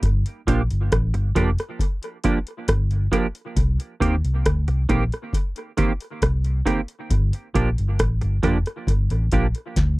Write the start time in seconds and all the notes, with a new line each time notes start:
0.03 G1, kick, closed hi-hat
0.26 closed hi-hat
0.47 A#1 F3 A#3 D4 G4, kick, closed hi-hat
0.70 G1, closed hi-hat
0.92 A1, kick, cross-stick, closed hi-hat
1.14 G1, muted clean electric guitar stroke, closed hi-hat
1.35 F1 F3 A#3 D4 G4, kick, closed hi-hat
1.58 cross-stick, closed hi-hat
1.79 kick, closed hi-hat
2.03 closed hi-hat
2.24 F3 A#3 D4 G4, kick, closed hi-hat
2.47 closed hi-hat
2.68 G1, kick, cross-stick, closed hi-hat
2.91 closed hi-hat
3.12 F3 A#3 D4 G4, kick, closed hi-hat
3.35 closed hi-hat
3.56 C2, kick, closed hi-hat
3.80 closed hi-hat
4.00 D#2 D#3 A#3 C4 G4, kick, closed hi-hat
4.24 C2, closed hi-hat
4.46 D2, kick, cross-stick, closed hi-hat
4.68 C2, muted clean electric guitar stroke, closed hi-hat
4.89 A#1 D#3 A#3 C4 G4, kick, closed hi-hat
5.12 cross-stick, closed hi-hat
5.33 kick, closed hi-hat
5.56 closed hi-hat
5.77 D#3 A#3 C4 G4, kick, closed hi-hat
6.01 closed hi-hat
6.22 C2, kick, cross-stick, closed hi-hat
6.44 closed hi-hat
6.66 D#3 A#3 C4 G4, kick, closed hi-hat
6.88 closed hi-hat
7.10 G1, kick, closed hi-hat
7.33 closed hi-hat
7.54 A#1 F3 A#3 D4 G4, kick, closed hi-hat
7.78 G1, closed hi-hat
7.99 A1, kick, cross-stick, closed hi-hat
8.21 G1, muted clean electric guitar stroke, closed hi-hat
8.43 F1 F3 A#3 D4 G4, kick, closed hi-hat
8.66 cross-stick, closed hi-hat
8.87 G1, kick, closed hi-hat
9.10 A1, closed hi-hat
9.32 A#1 F3 A#3 D4 G4, kick, closed hi-hat
9.55 closed hi-hat
9.76 D2, kick, snare, closed hi-hat